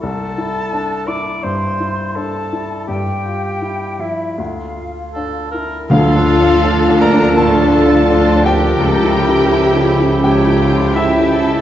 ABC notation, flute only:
X:1
M:4/4
L:1/8
Q:1/4=84
K:Dm
V:1 name="Flute"
a3 d' c'2 a2 | g3 e f3 z | A3 d d3 B- | B4 ^c2 G2 |]